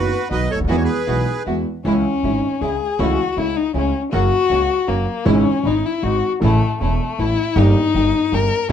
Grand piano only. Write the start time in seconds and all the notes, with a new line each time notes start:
0.30 B1 B2 D#3 F#3 B3 F#4
0.56 C#2
0.61 D2
0.65 D#2
0.69 E2 E3 G#3 B3 F#4
1.07 B1 B2 E3 G#3 B3 F#4
1.46 E2 E3 G#3 B3 F#4
1.85 C#2 C#3 E3 G#3 E4
2.25 G#1 G#2
2.61 C#2 C#3
2.99 C#2 C#3 E3 A3 E4
3.38 C#2 C#3
3.75 C#2 C#3
4.12 F#2 C#3 F#3 A#3 F#4
4.51 C#2 C#3
4.88 F#2 F#3
5.25 G#1 G#2 C#3 E3 G#3 E4
5.63 G#1 G#2
6.02 G#1 G#2
6.40 A1 A2 C#3 E3 A3 E4
6.80 E1 E2
7.18 A1 A2
7.56 G1 G2 D#3 G3 A#3 G4
7.94 G1 G2
8.32 G1 G2